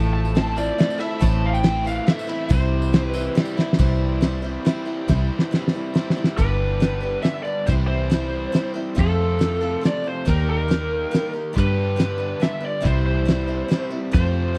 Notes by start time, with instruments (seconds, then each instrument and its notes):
Already playing: fingered electric bass A1, steel-string acoustic guitar A2 F3 A3 C4 E4 A4, lead electric guitar A5
0.03 tambourine
0.14 lead electric guitar A5
0.25 tambourine
0.35 steel-string acoustic guitar A3 C4 E4 A4, snare, ride
0.56 overdriven electric guitar F3, steel-string acoustic guitar A3 C4 E4 A4, lead electric guitar D5, tambourine
0.78 steel-string acoustic guitar A3 C4 E4 A4, snare, ride
0.90 tambourine
0.98 steel-string acoustic guitar A3 C4 E4 A4, lead electric guitar E5, ride
1.19 fingered electric bass A1, steel-string acoustic guitar A2 E3 A3 C4 E4 C5, lead electric guitar A5, kick, ride, tambourine
1.46 lead electric guitar F5
1.54 lead electric guitar G5, tambourine
1.64 steel-string acoustic guitar A3 C4 E4 C5, snare, ride
1.85 overdriven electric guitar E3, steel-string acoustic guitar A3 C4 E4 C5, lead electric guitar F5, tambourine
2.07 steel-string acoustic guitar A3 C4 E4 C5, lead electric guitar E5, snare, ride
2.19 tambourine
2.27 steel-string acoustic guitar A3 C4 E4 C5, ride
2.49 fingered electric bass C2, steel-string acoustic guitar C3 E3 G3 C4 E4 C5, lead electric guitar C5, kick, ride, tambourine
2.61 tambourine
2.82 tambourine
2.93 steel-string acoustic guitar G3 C4 E4 C5, snare, ride, tambourine
3.08 lead electric guitar B4
3.13 overdriven electric guitar E3, steel-string acoustic guitar G3 C4 E4 C5, tambourine
3.35 steel-string acoustic guitar G3 C4 E4 C5, snare, ride, tambourine
3.45 tambourine
3.57 steel-string acoustic guitar G3 C4 E4 C5, snare, tambourine
3.73 snare
3.79 fingered electric bass C2, steel-string acoustic guitar C3 E3 G3 C4 E4 C5, kick, closed hi-hat
4.21 steel-string acoustic guitar G3 C4 E4 C5, snare, closed hi-hat
4.42 steel-string acoustic guitar G3 C4 E4 C5
4.65 overdriven electric guitar C3 E3, steel-string acoustic guitar G3 C4 E4 C5, snare, closed hi-hat
4.85 steel-string acoustic guitar G3 C4 E4 C5
5.08 fingered electric bass C2, steel-string acoustic guitar C3 E3 G3 C4 E4 C5, kick, snare
5.39 snare
5.51 steel-string acoustic guitar G3 C4 E4 C5, snare
5.68 snare
5.73 steel-string acoustic guitar G3 C4 E4 C5
5.94 overdriven electric guitar C3 E3, steel-string acoustic guitar G3 C4 E4 C5, snare
6.10 snare
6.16 steel-string acoustic guitar G3 C4 E4 C5
6.24 snare
6.37 fingered electric bass G1, overdriven electric guitar G2 D3 B3, steel-string acoustic guitar G3 D4 G4 B4, lead electric guitar B4, kick, closed hi-hat
6.80 steel-string acoustic guitar G3 D4 G4 B4, snare, closed hi-hat
7.01 steel-string acoustic guitar D4 G4 B4
7.22 steel-string acoustic guitar G3 D4 G4 B4, lead electric guitar E5, snare, closed hi-hat
7.43 steel-string acoustic guitar G4 B4, lead electric guitar D5
7.47 steel-string acoustic guitar D4
7.66 fingered electric bass C2, steel-string acoustic guitar C3 E3 G3 C4 E4 C5, lead electric guitar C5, kick, closed hi-hat
7.87 lead electric guitar C5
8.10 steel-string acoustic guitar G3 C4 E4 C5, snare, closed hi-hat
8.52 steel-string acoustic guitar G3 C4 E4 C5, snare, closed hi-hat
8.74 steel-string acoustic guitar G3 C4 E4 C5
8.95 overdriven electric guitar F2 C3, fingered electric bass F2, steel-string acoustic guitar F3 A3 C4 F4 A4, kick, closed hi-hat
9.00 lead electric guitar A4
9.39 steel-string acoustic guitar A3 C4 F4 A4, snare, closed hi-hat
9.61 steel-string acoustic guitar C4 F4 A4
9.81 steel-string acoustic guitar A3 C4 F4 A4, closed hi-hat
9.85 lead electric guitar D5, snare
10.04 steel-string acoustic guitar C4 F4 A4, lead electric guitar C5
10.25 fingered electric bass D#2, steel-string acoustic guitar D#3 G3 D#4 G4 A#4, overdriven electric guitar A#3, kick, closed hi-hat
10.30 lead electric guitar A#4
10.50 lead electric guitar A#4
10.68 steel-string acoustic guitar G3 D#4 G4 A#4, snare, closed hi-hat
11.11 steel-string acoustic guitar G3 D#4 G4 A#4, snare, closed hi-hat
11.33 steel-string acoustic guitar D#4 G4 A#4
11.53 overdriven electric guitar G2 D3 B3, steel-string acoustic guitar G3 D4 G4 B4, kick
11.57 fingered electric bass G2, lead electric guitar B4, closed hi-hat
11.96 steel-string acoustic guitar G3 D4 G4 B4, snare, closed hi-hat
12.18 steel-string acoustic guitar D4 G4 B4
12.40 steel-string acoustic guitar G3 D4 G4 B4, lead electric guitar E5, snare, closed hi-hat
12.60 steel-string acoustic guitar D4 G4 B4
12.65 lead electric guitar D5
12.81 steel-string acoustic guitar C3 E3 G3 C4 E4 C5, lead electric guitar C5
12.85 fingered electric bass C2, kick, closed hi-hat
13.07 lead electric guitar C5
13.25 steel-string acoustic guitar G3 C4 E4 C5, snare, closed hi-hat
13.47 steel-string acoustic guitar G3 C4 E4 C5
13.68 steel-string acoustic guitar G3 C4 E4 C5, snare, closed hi-hat
13.90 steel-string acoustic guitar G3 C4 E4 C5
14.11 overdriven electric guitar F2 C3, fingered electric bass F2, steel-string acoustic guitar F3 A3 C4 F4 C5, lead electric guitar C5, kick, closed hi-hat
14.55 steel-string acoustic guitar A3